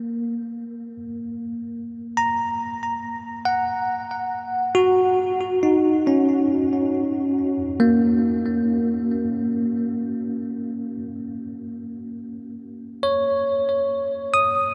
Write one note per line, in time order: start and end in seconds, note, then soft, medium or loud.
0.00 0.96 A#3 medium
2.17 3.64 A#5 medium
3.45 6.61 F#5 medium
4.75 7.91 F#4 medium
5.63 6.46 D#4 medium
6.07 9.22 C#4 medium
7.80 10.96 A#3 medium
13.03 14.74 C#5 medium
14.34 14.74 D#6 medium